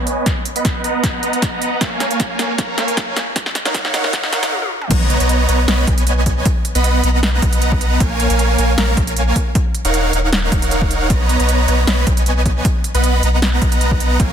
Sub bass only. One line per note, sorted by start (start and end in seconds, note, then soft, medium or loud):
0.00 0.23 B1 medium
0.56 0.82 B1 loud
0.84 1.21 B1 loud
1.23 1.79 B1 loud
1.81 2.09 A#1 loud
2.11 2.37 A#1 loud
2.39 2.57 A#1 loud
2.78 3.14 A#1 loud
4.91 5.18 B1 loud
5.20 5.47 B1 loud
5.49 5.66 B1 loud
5.68 5.86 B1 loud
5.87 6.43 B1 loud
6.75 7.02 B1 loud
7.04 7.41 B1 loud
7.42 7.99 B1 loud
8.00 8.28 A#1 loud
8.30 8.57 A#1 loud
8.59 8.76 A#1 loud
8.78 8.95 A#1 loud
8.97 9.33 A#1 loud
9.85 10.11 D#1 loud
10.13 10.50 D#1 loud
10.52 11.12 D#1 loud
11.10 11.38 B1 loud
11.40 11.66 B1 loud
11.68 11.86 B1 loud
11.88 12.05 B1 loud
12.07 12.62 B1 loud
12.95 13.21 B1 loud
13.23 13.60 B1 loud
13.62 14.18 B1 loud
14.20 14.33 A#1 loud